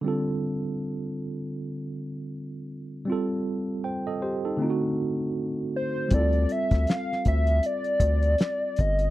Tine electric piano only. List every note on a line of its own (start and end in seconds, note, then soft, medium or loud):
0.01 3.02 D3 medium
0.01 3.03 G3 medium
0.01 3.04 C4 medium
0.07 3.05 F4 medium
0.07 3.06 A4 medium
3.05 4.55 G3 medium
3.05 4.56 C4 medium
3.10 3.83 F4 medium
3.10 3.84 A4 medium
3.84 4.06 C5 soft
3.84 4.05 G5 medium
4.07 4.22 A4 soft
4.07 4.21 D#5 medium
4.22 4.44 G4 soft
4.22 4.43 C5 medium
4.45 4.61 D#4 soft
4.45 4.81 A4 medium
4.57 6.07 D3 medium
4.57 6.08 A3 medium
4.57 6.09 C4 medium
4.62 6.10 D#4 medium
4.62 4.69 F4 medium
4.70 6.14 F#4 medium
6.08 9.10 G3 medium
6.08 9.10 C4 medium
6.13 6.20 E4 soft
6.13 9.10 A4 medium
6.20 9.10 F4 medium